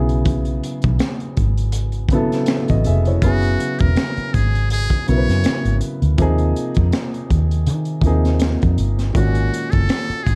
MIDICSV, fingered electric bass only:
0, 0, Header, 1, 3, 480
1, 0, Start_track
1, 0, Tempo, 740741
1, 165, Time_signature, 4, 2, 24, 8
1, 6707, End_track
2, 0, Start_track
2, 0, Title_t, "Fingered electric bass"
2, 0, Program_c, 0, 33
2, 0, Note_on_c, 0, 35, 89
2, 388, Note_off_c, 0, 35, 0
2, 549, Note_on_c, 0, 35, 79
2, 643, Note_off_c, 0, 35, 0
2, 895, Note_on_c, 0, 32, 75
2, 1472, Note_off_c, 0, 32, 0
2, 1752, Note_on_c, 0, 33, 69
2, 1844, Note_off_c, 0, 33, 0
2, 1862, Note_on_c, 0, 29, 76
2, 2071, Note_off_c, 0, 29, 0
2, 2091, Note_on_c, 0, 30, 86
2, 2304, Note_off_c, 0, 30, 0
2, 2471, Note_on_c, 0, 28, 77
2, 2564, Note_off_c, 0, 28, 0
2, 2818, Note_on_c, 0, 32, 83
2, 3154, Note_off_c, 0, 32, 0
2, 3297, Note_on_c, 0, 35, 84
2, 3407, Note_off_c, 0, 35, 0
2, 3426, Note_on_c, 0, 42, 81
2, 3521, Note_off_c, 0, 42, 0
2, 3662, Note_on_c, 0, 32, 71
2, 3759, Note_off_c, 0, 32, 0
2, 3901, Note_on_c, 0, 38, 76
2, 3998, Note_off_c, 0, 38, 0
2, 4014, Note_on_c, 0, 39, 86
2, 4226, Note_off_c, 0, 39, 0
2, 4389, Note_on_c, 0, 41, 73
2, 4482, Note_off_c, 0, 41, 0
2, 4736, Note_on_c, 0, 39, 74
2, 4970, Note_on_c, 0, 51, 80
2, 4980, Note_off_c, 0, 39, 0
2, 5184, Note_off_c, 0, 51, 0
2, 5198, Note_on_c, 0, 39, 79
2, 5544, Note_off_c, 0, 39, 0
2, 5596, Note_on_c, 0, 41, 72
2, 5687, Note_off_c, 0, 41, 0
2, 5690, Note_on_c, 0, 31, 77
2, 5904, Note_off_c, 0, 31, 0
2, 5933, Note_on_c, 0, 32, 93
2, 6145, Note_off_c, 0, 32, 0
2, 6311, Note_on_c, 0, 30, 78
2, 6404, Note_off_c, 0, 30, 0
2, 6657, Note_on_c, 0, 32, 82
2, 6707, Note_off_c, 0, 32, 0
2, 6707, End_track
3, 0, Start_track
3, 0, Title_t, "Muted fingered electric bass strokes"
3, 2705, Note_on_c, 9, 29, 41
3, 2770, Note_off_c, 9, 29, 0
3, 3539, Note_on_c, 9, 29, 46
3, 3604, Note_off_c, 9, 29, 0
3, 6542, Note_on_c, 9, 29, 38
3, 6607, Note_off_c, 9, 29, 0
3, 6707, End_track
0, 0, End_of_file